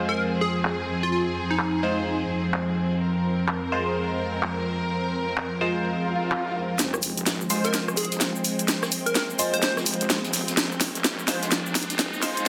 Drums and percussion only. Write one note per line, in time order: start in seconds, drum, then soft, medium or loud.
0.18 closed hi-hat medium
0.41 closed hi-hat soft
0.49 closed hi-hat medium
0.56 closed hi-hat soft
0.65 clap loud
0.65 closed hi-hat medium
1.03 closed hi-hat soft
1.12 closed hi-hat medium
1.36 closed hi-hat soft
1.50 closed hi-hat soft
1.59 clap loud
1.59 closed hi-hat medium
2.07 closed hi-hat medium
2.30 closed hi-hat soft
2.38 closed hi-hat medium
2.45 closed hi-hat soft
2.54 clap loud
2.54 closed hi-hat medium
2.92 closed hi-hat soft
3.01 closed hi-hat medium
3.25 closed hi-hat soft
3.40 closed hi-hat medium
3.48 clap loud
3.48 closed hi-hat medium
3.72 closed hi-hat soft
3.87 closed hi-hat soft
3.96 closed hi-hat medium
4.19 closed hi-hat soft
4.27 closed hi-hat medium
4.34 closed hi-hat medium
4.43 clap loud
4.43 closed hi-hat medium
4.81 closed hi-hat soft
4.90 closed hi-hat medium
5.14 closed hi-hat soft
5.29 closed hi-hat medium
5.37 clap loud
5.37 closed hi-hat medium
5.76 closed hi-hat medium
5.85 closed hi-hat medium
6.08 closed hi-hat soft
6.16 closed hi-hat medium
6.23 closed hi-hat medium
6.32 clap loud
6.32 closed hi-hat medium
6.55 closed hi-hat soft
6.70 closed hi-hat medium
6.79 snare soft
6.79 closed hi-hat medium
6.79 shaker medium
6.79 shaker soft
6.94 cross-stick medium
6.94 shaker soft
7.02 open hi-hat loud
7.02 shaker medium
7.17 closed hi-hat medium
7.17 shaker soft
7.26 snare soft
7.26 snare loud
7.26 closed hi-hat medium
7.26 shaker medium
7.26 shaker soft
7.41 shaker soft
7.50 open hi-hat medium
7.50 shaker medium
7.64 closed hi-hat soft
7.64 shaker soft
7.73 snare soft
7.73 closed hi-hat medium
7.73 shaker medium
7.73 shaker soft
7.88 cross-stick medium
7.88 shaker soft
7.97 open hi-hat loud
7.97 shaker medium
8.05 closed hi-hat medium
8.12 closed hi-hat soft
8.12 closed hi-hat medium
8.12 shaker soft
8.20 snare loud
8.20 snare medium
8.20 closed hi-hat medium
8.20 shaker medium
8.20 shaker soft
8.36 shaker soft
8.45 open hi-hat medium
8.45 shaker medium
8.59 closed hi-hat medium
8.59 shaker soft
8.68 snare medium
8.68 closed hi-hat medium
8.68 shaker medium
8.68 shaker soft
8.82 cross-stick medium
8.82 snare medium
8.82 shaker soft
8.92 open hi-hat loud
8.92 shaker medium
9.06 closed hi-hat medium
9.06 shaker soft
9.15 snare medium
9.15 snare loud
9.15 closed hi-hat medium
9.15 shaker medium
9.15 shaker soft
9.30 shaker soft
9.39 open hi-hat loud
9.39 shaker medium
9.54 closed hi-hat soft
9.54 shaker soft
9.62 snare medium
9.62 closed hi-hat medium
9.62 shaker medium
9.62 shaker soft
9.77 cross-stick medium
9.77 snare soft
9.77 shaker soft
9.86 open hi-hat loud
9.86 shaker medium
9.94 closed hi-hat medium
10.01 closed hi-hat medium
10.01 shaker soft
10.10 snare loud
10.10 snare medium
10.10 closed hi-hat medium
10.10 shaker medium
10.10 shaker soft
10.24 closed hi-hat soft
10.24 shaker soft
10.33 snare soft
10.33 open hi-hat medium
10.33 shaker medium
10.48 closed hi-hat medium
10.48 closed hi-hat soft
10.48 shaker soft
10.57 snare medium
10.57 closed hi-hat medium
10.57 shaker soft
10.57 shaker medium
10.72 shaker soft
10.80 snare medium
10.80 open hi-hat loud
10.80 shaker medium
10.95 closed hi-hat soft
10.95 shaker soft
11.04 snare loud
11.04 snare medium
11.04 closed hi-hat medium
11.04 shaker soft
11.04 shaker medium
11.19 shaker soft
11.27 snare medium
11.27 open hi-hat loud
11.27 shaker medium
11.43 closed hi-hat soft
11.43 shaker soft
11.51 snare medium
11.51 closed hi-hat medium
11.51 shaker medium
11.51 shaker soft
11.66 shaker soft
11.75 snare medium
11.75 open hi-hat loud
11.75 shaker medium
11.83 closed hi-hat medium
11.90 closed hi-hat soft
11.90 closed hi-hat medium
11.90 shaker soft
11.99 snare loud
11.99 snare medium
11.99 closed hi-hat medium
11.99 shaker medium
11.99 shaker soft
12.14 shaker soft
12.22 snare medium
12.22 open hi-hat loud
12.22 shaker medium
12.37 closed hi-hat medium
12.37 shaker soft